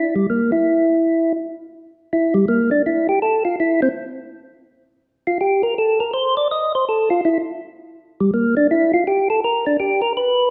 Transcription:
0.00 0.15 E4 medium
0.16 0.27 G3 medium
0.30 0.51 A#3 medium
0.52 1.33 E4 medium
2.13 2.34 E4 medium
2.34 2.46 G3 medium
2.48 2.70 A#3 medium
2.71 2.82 D4 medium
2.86 3.07 E4 medium
3.09 3.19 G4 medium
3.22 3.43 A4 medium
3.45 3.56 F4 medium
3.60 3.81 E4 medium
3.82 3.89 C4 medium
5.27 5.38 F4 medium
5.41 5.62 G4 medium
5.63 5.74 A#4 medium
5.78 5.99 A4 medium
6.00 6.11 A#4 medium
6.14 6.35 C5 medium
6.37 6.48 D5 medium
6.51 6.72 D#5 medium
6.75 6.85 C5 medium
6.89 7.09 A4 medium
7.10 7.21 F4 medium
7.25 7.38 E4 medium
8.20 8.31 G3 medium
8.34 8.55 A#3 medium
8.57 8.67 D4 medium
8.71 8.92 E4 medium
8.94 9.04 F4 medium
9.07 9.28 G4 medium
9.30 9.40 A4 medium
9.44 9.65 A#4 medium
9.66 9.77 D4 medium
9.80 10.01 G4 medium
10.02 10.13 A#4 medium
10.17 10.49 B4 medium

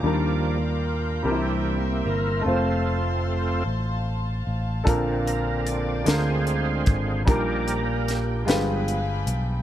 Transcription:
0.00 1.21 D#2 medium
0.00 1.21 D#3 soft
0.00 1.21 G3 soft
0.00 1.23 D4 soft
0.00 2.43 A#5 medium
0.00 1.23 D6 medium
0.04 0.59 F3 soft
0.04 0.59 G3 soft
0.04 1.22 A#3 soft
0.04 1.26 D#4 soft
0.04 1.30 F4 medium
0.04 1.24 A#4 medium
0.04 1.24 D5 medium
0.04 0.59 D5 soft
0.04 2.43 G5 medium
1.23 2.01 C2 medium
1.23 2.41 C3 soft
1.23 1.78 E3 soft
1.23 2.45 G3 soft
1.23 2.42 A#3 soft
1.23 2.42 C4 soft
1.23 1.32 D4 soft
1.23 1.79 D4 soft
1.23 2.42 E4 soft
1.23 2.46 A#4 soft
1.23 2.44 E5 medium
1.23 4.83 C6 medium
1.27 2.09 G4 medium
1.32 2.49 E4 soft
2.05 2.43 G1 medium
2.05 2.43 A#4 medium
2.41 4.80 A3 soft
2.41 4.82 C4 soft
2.41 7.23 F5 medium
2.46 3.62 F1 medium
2.46 3.63 F3 soft
2.46 3.63 A3 soft
2.46 3.63 C4 medium
2.46 4.83 F4 soft
2.46 3.64 F4 soft
2.46 3.64 A4 medium
2.46 4.84 C5 medium
2.46 4.84 C5 soft
2.46 6.03 A5 medium
3.66 4.42 A1 medium
4.47 4.84 A1 medium
4.84 6.03 A#1 medium
4.84 6.02 A#2 medium
4.84 6.03 D3 soft
4.84 6.03 A#3 soft
4.84 6.03 D4 medium
4.84 6.05 F4 soft
4.84 6.05 A4 medium
4.84 6.06 A#4 medium
4.84 7.25 D5 medium
4.84 kick medium
4.84 closed hi-hat medium
4.88 6.03 C4 soft
5.26 5.68 A#4 medium
5.26 closed hi-hat medium
5.66 6.08 D5 medium
5.66 closed hi-hat medium
6.04 6.83 D2 medium
6.04 7.22 D3 soft
6.04 7.26 G#3 medium
6.04 7.22 G#3 soft
6.04 7.23 C4 soft
6.04 7.24 D4 soft
6.04 7.23 F4 medium
6.04 7.27 F4 soft
6.04 7.22 G#4 soft
6.04 7.27 A#4 medium
6.04 7.23 C5 medium
6.04 closed hi-hat medium
6.08 7.27 G#5 medium
6.08 snare medium
6.47 closed hi-hat soft
6.86 7.24 G#1 medium
6.86 kick medium
6.86 closed hi-hat medium
7.25 8.43 A#1 medium
7.25 8.43 A#2 soft
7.25 7.80 F3 soft
7.25 8.46 G3 medium
7.25 7.81 G3 soft
7.25 8.44 A#3 soft
7.25 8.46 D4 soft
7.25 8.47 D#4 soft
7.25 8.44 G4 soft
7.25 8.46 A#4 medium
7.25 8.48 A#4 medium
7.25 8.46 D5 medium
7.25 7.81 D5 medium
7.25 9.62 G5 medium
7.25 kick medium
7.25 closed hi-hat medium
7.29 8.14 A#4 medium
7.68 closed hi-hat soft
8.08 snare soft
8.08 closed hi-hat medium
8.45 9.23 G1 medium
8.45 9.62 G2 medium
8.45 9.01 F3 soft
8.45 9.62 G#3 medium
8.45 9.01 G#3 soft
8.45 9.01 B3 soft
8.45 9.62 F4 medium
8.45 9.62 G4 medium
8.45 9.62 B4 medium
8.45 9.62 F5 medium
8.45 9.62 G#5 medium
8.45 9.62 B5 medium
8.45 closed hi-hat medium
8.50 snare medium
8.88 closed hi-hat soft
9.27 9.62 B1 medium
9.27 closed hi-hat medium

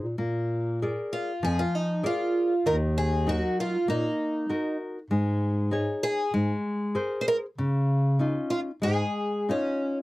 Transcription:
0.02 0.16 A#2 medium
0.18 0.99 A#2 medium
0.18 0.79 A#3 medium
0.82 1.31 G#4 soft
0.82 1.31 A#4 soft
0.82 1.31 D5 soft
1.13 1.44 F4 medium
1.42 1.62 F2 medium
1.42 2.02 F3 medium
1.42 1.59 G#4 medium
1.59 1.75 F4 medium
1.75 2.06 D#4 medium
2.03 2.68 F4 medium
2.03 2.53 G#4 soft
2.03 2.53 A#4 soft
2.03 2.53 D5 medium
2.66 3.45 D#2 medium
2.66 3.25 D#3 medium
2.66 2.75 A#4 medium
2.98 3.29 G#4 medium
3.27 3.76 F#3 soft
3.27 3.75 D#4 soft
3.27 3.59 F#4 medium
3.27 3.76 A#4 soft
3.60 3.89 F4 medium
3.88 4.08 A#2 medium
3.88 4.47 A#3 medium
3.88 4.76 D#4 medium
4.49 4.98 D#4 soft
4.49 4.98 F#4 soft
4.49 4.98 A#4 medium
5.10 5.90 G#2 loud
5.10 5.69 G#3 medium
5.71 6.21 D#4 soft
5.71 6.21 G#4 soft
5.71 6.22 C#5 medium
6.03 6.32 G#4 loud
6.34 6.54 G#2 medium
6.34 6.94 G#3 medium
6.95 7.45 G#4 soft
6.95 7.45 A#4 soft
6.95 7.45 C5 medium
7.21 7.27 C5 medium
7.28 7.36 A#4 loud
7.58 8.39 C#3 medium
7.58 8.18 C#3 medium
8.19 8.70 C#4 soft
8.19 8.70 D#4 soft
8.19 8.70 F4 medium
8.50 8.59 F4 medium
8.82 9.04 G#2 medium
8.82 9.47 G#3 medium
8.82 9.52 G#4 medium
9.49 10.02 C#4 soft
9.49 9.97 C#4 medium
9.49 10.02 D#4 soft
9.49 10.02 F4 soft

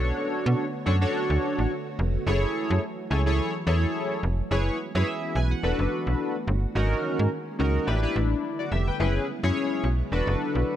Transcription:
0.00 0.12 B1 medium
0.00 2.24 D3 medium
0.00 4.47 A3 medium
0.00 2.22 B3 medium
0.00 0.64 D4 loud
0.00 0.65 F#4 medium
0.00 4.47 F#4 loud
0.00 0.65 A4 medium
0.00 0.65 C#5 loud
0.00 4.47 C#5 medium
0.46 0.55 B2 loud
0.86 1.06 F#2 medium
0.86 0.96 D4 medium
0.86 0.96 F#4 medium
0.86 0.96 A4 medium
0.86 0.96 C#5 loud
1.01 1.71 D4 loud
1.01 1.71 F#4 medium
1.01 1.71 A4 medium
1.01 1.71 C#5 loud
1.30 1.38 D2 medium
1.59 1.67 A1 medium
1.99 2.18 F1 loud
2.26 2.46 F#1 loud
2.26 4.49 E3 medium
2.26 4.49 F#3 medium
2.26 2.80 E4 medium
2.26 2.80 G#4 medium
2.26 2.80 A4 medium
2.26 2.81 C#5 loud
2.70 2.79 F#2 loud
3.10 3.41 C#2 loud
3.10 3.20 E4 medium
3.10 3.21 G#4 medium
3.10 3.21 A4 medium
3.10 3.21 C#5 medium
3.26 3.53 E4 medium
3.26 3.53 G#4 medium
3.26 3.53 A4 medium
3.26 3.53 C#5 loud
3.67 3.86 E2 loud
3.67 4.20 E4 medium
3.67 4.20 G#4 medium
3.67 4.20 A4 medium
3.67 4.21 C#5 loud
4.23 4.42 F1 loud
4.51 4.70 F#1 loud
4.51 6.73 E3 medium
4.51 5.62 G#3 medium
4.51 6.73 B3 medium
4.51 5.62 C#4 medium
4.51 4.78 E4 medium
4.51 7.84 F#4 medium
4.51 4.78 G#4 medium
4.51 4.78 B4 medium
4.51 4.78 C#5 loud
4.95 5.03 F#2 loud
4.95 5.38 E4 medium
4.95 5.07 G#4 medium
4.95 5.07 B4 medium
4.95 5.07 C#5 loud
5.07 5.34 G#4 medium
5.07 5.34 E5 medium
5.35 5.54 B1 medium
5.35 5.51 B4 medium
5.35 5.50 G#5 medium
5.51 5.78 F#5 medium
5.63 5.74 E1 medium
5.63 6.74 A3 medium
5.63 6.36 D4 medium
5.63 6.74 D4 medium
5.63 6.36 F#4 medium
5.63 6.36 A4 medium
5.63 6.36 B4 medium
5.79 5.87 F#1 medium
6.07 6.15 B1 medium
6.47 6.67 G1 loud
6.75 6.95 G#1 loud
6.75 7.87 D#3 medium
6.75 7.87 G#3 medium
6.75 7.87 A#3 medium
6.75 7.29 C#4 medium
6.75 7.86 C#4 medium
6.75 7.29 D#4 medium
6.75 7.29 F#4 medium
6.75 7.29 A#4 loud
7.19 7.28 G#2 medium
7.59 7.79 C#2 medium
7.59 7.86 C#4 medium
7.59 7.86 D#4 medium
7.59 7.86 F#4 medium
7.59 7.86 A#4 medium
7.87 8.07 A1 loud
7.87 8.98 D3 medium
7.87 8.98 G3 medium
7.87 8.98 A3 medium
7.87 10.76 B3 medium
7.87 8.00 D4 medium
7.87 8.00 E4 medium
7.87 10.76 E4 medium
7.87 8.00 G4 medium
7.87 8.00 B4 loud
8.03 8.64 D4 medium
8.03 8.64 E4 medium
8.03 8.15 G4 medium
8.03 8.16 B4 loud
8.16 8.35 A1 loud
8.59 8.71 F#4 medium
8.59 8.71 D5 medium
8.72 8.91 F1 medium
8.72 8.87 G4 medium
8.72 8.86 E5 medium
8.87 8.99 B4 medium
8.87 9.14 G5 medium
8.99 9.19 F#1 loud
8.99 10.10 C#3 medium
8.99 10.76 F#3 medium
8.99 10.10 G#3 medium
8.99 9.26 C#4 medium
8.99 9.26 E4 medium
8.99 9.27 G#4 medium
8.99 9.27 B4 medium
9.43 9.52 F#2 loud
9.43 9.86 C#4 medium
9.43 9.86 E4 medium
9.43 9.86 G#4 medium
9.43 9.87 C#5 loud
9.84 10.03 B1 medium
10.12 10.22 E1 medium
10.12 10.76 D3 medium
10.12 10.76 A3 medium
10.12 10.76 D4 medium
10.12 10.76 F#4 medium
10.12 10.76 A4 medium
10.12 10.76 B4 medium
10.27 10.36 F#1 loud
10.55 10.64 B1 medium

